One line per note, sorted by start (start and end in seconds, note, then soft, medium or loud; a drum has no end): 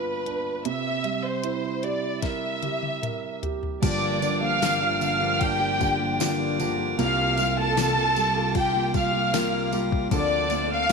0.00 0.61 G2 medium
0.00 0.67 B3 medium
0.00 0.26 D4 medium
0.00 0.67 F4 medium
0.00 0.62 B4 medium
0.26 0.64 D4 soft
0.26 closed hi-hat medium
0.65 3.79 C3 medium
0.65 1.25 E5 medium
0.65 closed hi-hat medium
1.04 2.59 G3 soft
1.04 closed hi-hat medium
1.25 1.84 C5 medium
1.44 2.99 E4 medium
1.44 closed hi-hat medium
1.83 2.61 G4 soft
1.83 2.24 D5 medium
1.83 closed hi-hat medium
2.22 3.01 A#4 soft
2.22 3.39 E5 medium
2.22 kick medium
2.22 snare soft
2.22 closed hi-hat medium
2.63 3.41 G4 soft
2.63 closed hi-hat medium
2.63 high tom medium
2.83 high tom medium
3.02 3.80 A#4 soft
3.02 closed hi-hat medium
3.02 mid tom medium
3.43 3.81 G4 soft
3.43 closed hi-hat medium
3.43 floor tom medium
3.63 floor tom medium
3.82 6.95 G1 medium
3.82 4.22 G2 medium
3.82 6.95 G2 medium
3.82 6.96 G2 medium
3.82 4.22 D3 medium
3.82 6.96 D3 medium
3.82 4.20 F3 medium
3.82 10.08 A#3 medium
3.82 4.21 A#3 medium
3.82 4.22 D4 medium
3.82 10.08 F4 soft
3.82 4.23 G4 medium
3.82 4.39 D5 medium
3.82 4.39 D6 medium
3.82 kick loud
3.82 crash medium
3.82 ride medium
3.82 tambourine soft
4.21 5.00 D3 medium
4.21 4.42 F3 medium
4.21 4.42 A#3 medium
4.21 4.41 D4 medium
4.21 4.40 G4 medium
4.21 ride medium
4.21 tambourine soft
4.41 4.61 F3 soft
4.41 4.61 A#3 soft
4.41 4.61 D4 medium
4.41 4.62 G4 medium
4.41 5.01 F5 medium
4.41 5.02 F6 medium
4.61 4.81 G2 medium
4.61 4.82 D3 medium
4.61 4.82 F3 medium
4.61 6.16 A#3 medium
4.61 4.81 A#3 medium
4.61 4.81 D4 medium
4.61 4.79 G4 medium
4.61 snare loud
4.61 ride medium
4.61 tambourine medium
4.81 5.22 F3 soft
4.81 5.21 A#3 soft
4.81 5.20 D4 soft
4.81 5.19 G4 medium
5.01 5.79 D3 soft
5.01 5.39 F5 medium
5.01 5.40 F6 medium
5.01 ride soft
5.01 tambourine soft
5.20 5.61 F3 soft
5.20 5.60 A#3 soft
5.20 5.60 D4 soft
5.20 5.59 G4 medium
5.41 6.95 D4 medium
5.41 6.21 G4 medium
5.41 6.20 G5 loud
5.41 kick medium
5.41 ride medium
5.60 5.78 F3 soft
5.60 5.79 A#3 medium
5.60 5.80 D4 medium
5.60 5.80 G4 medium
5.79 6.58 D3 medium
5.79 6.00 F3 medium
5.79 6.00 A#3 medium
5.79 5.99 D4 medium
5.79 5.98 G4 medium
5.79 kick medium
5.79 ride soft
5.79 tambourine soft
5.99 6.19 F3 soft
5.99 6.20 A#3 soft
5.99 6.20 D4 soft
5.99 6.20 G4 medium
6.20 6.59 G2 medium
6.20 6.60 D3 medium
6.20 6.58 F3 medium
6.20 6.59 A#3 medium
6.20 6.60 D4 medium
6.20 6.97 F4 medium
6.20 6.60 G4 medium
6.20 snare loud
6.20 ride medium
6.20 tambourine medium
6.59 6.98 D3 medium
6.59 6.79 F3 medium
6.59 6.80 A#3 medium
6.59 6.78 D4 medium
6.59 6.77 G4 medium
6.59 ride medium
6.59 tambourine soft
6.78 6.98 F3 soft
6.78 6.98 A#3 soft
6.78 6.99 D4 soft
6.78 6.99 G4 soft
6.98 10.07 C2 medium
6.98 10.08 C2 medium
6.98 7.38 C3 medium
6.98 10.08 C3 medium
6.98 7.36 G3 medium
6.98 7.37 A#3 medium
6.98 7.38 F4 medium
6.98 7.39 G4 medium
6.98 7.54 F5 medium
6.98 7.55 F6 medium
6.98 ride medium
6.98 tambourine soft
7.37 7.57 G3 medium
7.37 8.15 G3 medium
7.37 7.58 A#3 medium
7.37 7.57 F4 medium
7.37 7.56 G4 medium
7.37 ride medium
7.37 tambourine medium
7.57 7.76 A#3 soft
7.57 7.77 F4 soft
7.57 7.77 G4 medium
7.57 8.56 A4 medium
7.57 8.56 A5 loud
7.76 7.96 C3 medium
7.76 7.97 G3 medium
7.76 9.29 A#3 medium
7.76 7.97 A#3 medium
7.76 7.96 F4 medium
7.76 7.95 G4 medium
7.76 snare loud
7.76 ride medium
7.76 tambourine medium
7.96 8.37 A#3 soft
7.96 8.35 F4 soft
7.96 8.34 G4 soft
8.16 8.93 G3 medium
8.16 ride soft
8.16 tambourine medium
8.35 8.76 A#3 soft
8.35 8.74 F4 medium
8.35 8.73 G4 medium
8.55 10.08 F4 medium
8.55 8.93 G4 medium
8.55 8.92 G5 medium
8.55 kick medium
8.55 ride medium
8.55 tambourine soft
8.74 8.93 A#3 soft
8.74 8.94 F4 medium
8.74 8.94 G4 medium
8.93 9.13 G3 medium
8.93 9.71 G3 medium
8.93 9.14 A#3 medium
8.93 9.13 F4 medium
8.93 9.12 G4 medium
8.93 9.70 F5 medium
8.93 9.70 F6 medium
8.93 kick medium
8.93 ride medium
8.93 tambourine soft
9.13 9.33 A#3 soft
9.13 9.33 F4 medium
9.13 9.33 G4 medium
9.33 9.72 C3 medium
9.33 9.71 G3 medium
9.33 10.09 A#3 medium
9.33 9.72 A#3 medium
9.33 9.73 F4 medium
9.33 9.73 G4 medium
9.33 snare loud
9.33 ride medium
9.33 tambourine medium
9.72 10.11 G3 medium
9.72 10.10 G3 medium
9.72 10.11 A#3 medium
9.72 10.12 F4 medium
9.72 10.12 G4 medium
9.72 ride medium
9.72 tambourine soft
9.92 kick medium
10.11 10.92 D2 medium
10.11 10.50 D3 medium
10.11 10.92 D3 soft
10.11 10.92 D3 medium
10.11 10.48 F3 medium
10.11 10.49 A#3 medium
10.11 10.92 C4 medium
10.11 10.50 D4 medium
10.11 10.92 A4 medium
10.11 10.51 A4 medium
10.11 10.68 D5 medium
10.11 10.68 D6 medium
10.11 kick loud
10.11 ride medium
10.11 tambourine medium
10.49 10.70 F3 medium
10.49 10.92 A3 soft
10.49 10.70 A#3 medium
10.49 10.69 D4 medium
10.49 10.68 A4 medium
10.49 ride medium
10.49 tambourine soft
10.69 10.89 A#3 soft
10.69 10.89 D4 soft
10.69 10.89 A4 medium
10.69 10.92 F5 loud
10.73 10.92 F6 medium
10.89 10.92 D3 medium